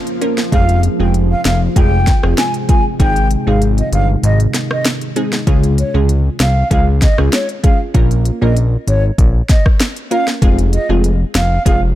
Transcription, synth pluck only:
0.21 0.36 A#3 medium
0.21 0.36 C#4 medium
0.21 0.36 F4 medium
0.21 0.36 A#4 medium
0.52 0.96 G#3 medium
0.52 0.96 C4 medium
0.52 0.96 F4 medium
0.52 0.96 G#4 loud
1.00 1.13 G#3 medium
1.00 1.13 C4 medium
1.00 1.13 F4 medium
1.00 1.13 G#4 medium
1.76 1.91 G#3 loud
1.76 1.91 C4 medium
1.76 1.91 F4 medium
1.76 1.91 G#4 loud
2.23 2.36 G#3 medium
2.23 2.36 C4 medium
2.23 2.37 F4 medium
2.23 2.37 G#4 medium
2.69 2.83 G#3 medium
2.69 2.84 C4 medium
2.69 2.84 F4 medium
2.69 2.84 G#4 medium
2.99 3.43 G#3 medium
2.99 3.43 C4 medium
2.99 3.43 D#4 medium
2.99 3.43 G#4 loud
3.47 3.60 G#3 medium
3.47 3.60 C4 medium
3.47 3.60 D#4 medium
3.47 3.60 G#4 medium
5.16 5.31 G#3 medium
5.16 5.31 C4 medium
5.16 5.31 D#4 medium
5.16 5.31 G#4 medium
5.47 5.90 G#3 loud
5.47 5.91 C#4 medium
5.47 5.91 F4 medium
5.47 5.91 G#4 loud
5.94 6.07 G#3 medium
5.94 6.08 C#4 medium
5.94 6.08 F4 medium
5.94 6.08 G#4 medium
6.71 6.86 G#3 loud
6.71 6.86 C#4 medium
6.71 6.86 F4 medium
6.71 6.86 G#4 loud
7.18 7.31 G#3 medium
7.18 7.31 C#4 medium
7.18 7.31 F4 medium
7.18 7.31 G#4 medium
7.63 7.78 G#3 medium
7.63 7.78 C#4 medium
7.63 7.79 F4 medium
7.63 7.79 G#4 medium
7.94 8.38 A#3 loud
7.94 8.38 C#4 medium
7.94 8.38 F4 medium
7.94 8.38 A#4 loud
8.42 8.55 A#3 medium
8.42 8.55 C#4 medium
8.42 8.55 F4 medium
8.42 8.55 A#4 medium
10.11 10.26 A#3 medium
10.11 10.26 C#4 medium
10.11 10.26 F4 medium
10.11 10.26 A#4 medium
10.42 10.85 G#3 loud
10.42 10.85 C4 medium
10.42 10.86 F4 medium
10.42 10.86 G#4 loud
10.89 11.02 G#3 medium
10.89 11.03 C4 medium
10.89 11.03 F4 medium
10.89 11.03 G#4 medium
11.65 11.80 G#3 medium
11.65 11.80 C4 medium
11.65 11.81 F4 medium
11.65 11.81 G#4 loud

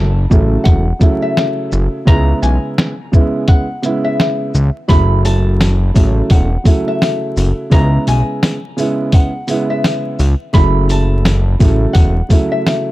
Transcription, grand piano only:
0.30 0.82 C#3 medium
0.30 0.82 F#3 medium
0.30 0.82 A3 medium
0.30 0.83 E4 medium
0.99 1.99 C#3 medium
0.99 2.00 F#3 medium
0.99 2.00 A3 medium
0.99 2.01 E4 loud
2.05 2.89 C#3 medium
2.05 2.90 G#3 medium
2.05 2.90 B3 medium
2.05 2.91 E4 loud
3.12 3.64 C#3 medium
3.12 3.64 G#3 medium
3.12 3.65 B3 medium
3.12 3.65 E4 loud
3.82 4.49 C#3 loud
3.82 4.49 G#3 medium
3.82 4.50 B3 medium
3.82 4.50 E4 loud
4.88 5.72 C#3 loud
4.88 5.72 F#3 medium
4.88 5.73 A3 medium
4.88 5.73 E4 loud
5.94 6.46 C#3 medium
5.94 6.47 F#3 medium
5.94 6.47 A3 medium
5.94 6.47 E4 medium
6.64 7.64 C#3 medium
6.64 7.64 F#3 medium
6.64 7.65 A3 medium
6.64 7.65 E4 loud
7.70 8.54 C#3 medium
7.70 8.55 G#3 medium
7.70 8.55 B3 medium
7.70 8.55 E4 loud
8.77 9.28 C#3 loud
8.77 9.29 G#3 medium
8.77 9.29 B3 medium
8.77 9.30 E4 loud
9.47 10.14 C#3 medium
9.47 10.14 G#3 medium
9.47 10.15 B3 medium
9.47 10.15 E4 loud
10.53 11.37 C#3 loud
10.53 11.37 F#3 medium
10.53 11.38 A3 medium
10.53 11.38 E4 loud
11.59 12.11 C#3 medium
11.59 12.11 F#3 medium
11.59 12.12 A3 medium
11.59 12.12 E4 medium
12.29 12.92 C#3 medium
12.29 12.92 F#3 medium
12.29 12.92 A3 medium
12.29 12.92 E4 loud

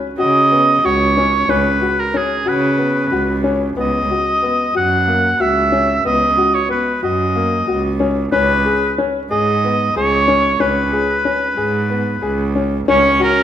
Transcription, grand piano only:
0.18 0.39 F#4 medium
0.51 0.72 B3 medium
0.84 1.04 F#4 medium
1.17 1.37 C#4 medium
1.49 1.69 C#4 medium
1.81 2.02 F#4 medium
2.14 2.34 C#4 medium
2.46 2.66 F#4 medium
2.78 2.99 B3 medium
3.12 3.32 F#4 medium
3.44 3.64 C#4 medium
3.77 3.97 B3 medium
4.11 4.31 F#4 medium
4.42 4.63 B3 medium
4.75 4.95 F#4 medium
5.07 5.28 A#3 medium
5.40 5.60 F#4 medium
5.72 5.93 C#4 medium
6.05 6.25 B3 medium
6.37 6.58 F#4 medium
6.69 6.90 B3 medium
7.03 7.23 F#4 medium
7.36 7.56 A#3 medium
7.67 7.88 F#4 medium
8.00 8.21 C#4 medium
8.32 8.53 C#4 medium
8.66 8.86 G#4 medium
8.98 9.19 C#4 medium
9.31 9.51 G#4 medium
9.64 9.84 B3 medium
9.96 10.17 G#4 medium
10.28 10.48 C#4 medium
10.60 10.81 C#4 medium
10.93 11.13 G#4 medium
11.25 11.46 C#4 medium
11.57 11.78 G#4 medium
11.90 12.11 B3 medium
12.22 12.43 G#4 medium
12.56 12.76 C#4 medium
12.88 13.09 C#4 medium
13.19 13.40 F#4 medium

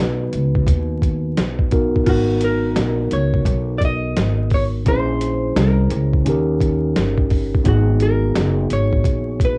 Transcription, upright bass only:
0.00 0.31 B1 medium
0.33 0.66 C#2 medium
0.67 1.33 D#2 loud
1.38 2.04 B1 medium
2.07 2.73 G#1 medium
2.77 3.10 A#1 loud
3.12 3.45 C#2 medium
3.45 4.12 B1 loud
4.17 4.83 G#1 medium
4.86 5.53 A#1 loud
5.56 5.89 C2 loud
5.91 6.24 C#2 loud
6.26 6.92 D#2 loud
6.96 7.62 G1 medium
7.66 8.32 G#1 loud
8.36 8.69 F#1 loud
8.71 9.04 G#1 medium
9.05 9.58 A#1 medium

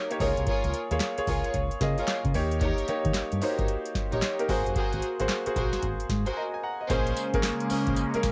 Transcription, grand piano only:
0.00 0.10 A#3 medium
0.00 0.11 D#4 medium
0.00 0.21 F#4 medium
0.00 0.11 G4 medium
0.00 0.12 C#5 loud
0.10 0.18 A#3 medium
0.10 0.19 D#4 medium
0.10 0.19 G4 medium
0.10 0.19 C#5 medium
0.20 0.75 A#3 medium
0.20 0.28 D#4 medium
0.20 0.76 G#4 medium
0.20 0.76 C#5 loud
0.27 0.79 F4 medium
0.91 1.11 A#3 medium
0.91 1.12 F4 medium
0.91 1.12 G#4 medium
0.91 1.12 C#5 loud
1.17 1.72 A#3 medium
1.17 1.72 F4 medium
1.17 1.72 G#4 medium
1.17 1.73 C#5 loud
1.81 2.33 A#3 loud
1.81 2.35 F4 medium
1.81 2.35 G#4 medium
1.81 2.35 D#5 loud
2.34 2.81 A#3 medium
2.34 2.81 D#4 medium
2.34 2.81 G4 medium
2.34 2.82 C#5 loud
2.88 3.35 A#3 medium
2.88 3.35 D#4 medium
2.88 3.35 G4 medium
2.88 3.35 C#5 medium
3.42 4.20 A#3 medium
3.42 4.20 D#4 medium
3.42 3.50 F#4 medium
3.42 4.20 C5 medium
3.49 4.23 G4 medium
4.39 4.47 A#3 medium
4.39 4.47 D#4 medium
4.39 4.47 G4 medium
4.39 4.47 A#4 medium
4.49 5.04 A#3 medium
4.49 5.04 F#4 medium
4.49 5.05 G#4 medium
4.49 5.05 C5 loud
5.20 5.40 A#3 medium
5.20 5.40 F#4 medium
5.20 5.41 G#4 medium
5.20 5.41 C5 loud
5.46 6.01 A#3 medium
5.46 6.01 F#4 medium
5.46 6.01 G#4 medium
5.46 6.01 C5 medium
6.37 6.61 D#5 medium
6.37 6.53 A#5 medium
6.54 6.63 G#5 medium
6.63 6.80 F#5 medium
6.63 6.88 A#5 medium
6.81 7.06 D#5 medium
6.90 7.24 A#3 medium
6.90 7.25 C#4 medium
6.90 7.25 G#4 medium
6.90 7.25 C5 loud
7.33 7.96 A#3 medium
7.33 7.96 C#4 medium
7.33 7.96 G#4 medium
7.33 7.97 A#4 loud
8.14 8.32 A#3 medium
8.14 8.32 C#4 medium
8.14 8.32 G#4 medium
8.14 8.32 A#4 loud

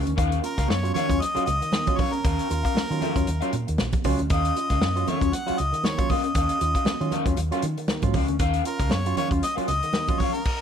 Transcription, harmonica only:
0.45 0.71 A#4 medium
0.69 0.94 C#5 medium
0.94 1.23 C#5 medium
1.21 1.45 D#5 loud
1.46 1.99 D#5 loud
1.98 2.15 C#5 medium
2.14 3.68 A#4 loud
4.32 5.10 D#5 loud
5.09 5.36 C#5 medium
5.35 5.61 F#5 loud
5.60 5.87 D#5 medium
5.85 6.13 C#5 loud
6.11 6.24 D#5 medium
6.24 7.23 D#5 loud
8.67 8.94 A#4 medium
8.93 9.17 C#5 medium
9.18 9.29 C#5 medium
9.44 9.55 D#5 loud
9.68 10.21 D#5 loud
10.20 10.35 C#5 medium
10.33 10.61 A#4 loud

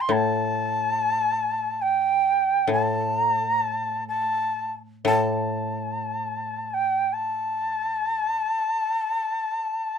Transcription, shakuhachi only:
0.00 0.14 C6 medium
0.12 1.83 A5 medium
1.82 2.71 G5 medium
2.73 3.20 A5 medium
3.20 3.32 A#5 medium
3.32 3.46 A5 medium
3.46 3.59 A#5 medium
3.59 4.04 A5 medium
4.09 4.72 A5 medium
5.07 6.70 A5 medium
6.70 7.15 G5 medium
6.70 6.75 A5 medium
7.13 9.98 A5 medium

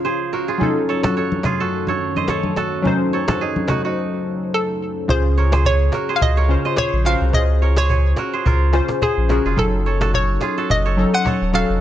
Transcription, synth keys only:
0.00 0.55 C#3 medium
0.00 0.56 C#4 medium
0.00 0.57 F4 medium
0.00 0.58 C#5 medium
0.58 2.79 F#3 medium
0.58 2.80 C#4 medium
0.58 2.81 D#4 medium
0.63 2.82 A4 medium
2.82 5.04 F#3 medium
2.82 5.05 C#4 medium
2.82 5.05 D#4 medium
2.87 5.06 C5 medium
5.08 6.11 C#3 medium
5.08 6.12 C#4 medium
5.08 6.12 F4 medium
5.08 6.12 G#4 medium
6.48 7.00 C#3 medium
6.48 7.00 C#4 medium
6.48 7.01 F4 medium
6.48 7.01 C5 medium
7.04 7.30 C#3 medium
7.04 7.31 C#4 medium
7.04 7.31 F4 medium
7.04 7.32 C5 medium
7.32 8.35 C#3 medium
7.32 8.36 C#4 medium
7.32 8.36 F4 medium
7.32 8.37 G#4 medium
8.72 9.24 C#3 medium
8.72 9.25 C#4 medium
8.72 9.25 F4 medium
8.72 9.25 C5 medium
9.28 9.55 C#3 medium
9.28 9.55 C#4 medium
9.28 9.56 F4 medium
9.28 9.56 G#4 medium
9.56 10.60 F#3 medium
9.56 10.60 C#4 medium
9.56 10.61 D#4 medium
9.56 10.61 A4 medium
10.97 11.49 F#3 medium
10.97 11.49 C#4 medium
10.97 11.49 D#4 medium
10.97 11.50 A4 medium
11.53 11.79 F#3 medium
11.53 11.79 C#4 medium
11.53 11.80 D#4 medium
11.53 11.80 A4 medium

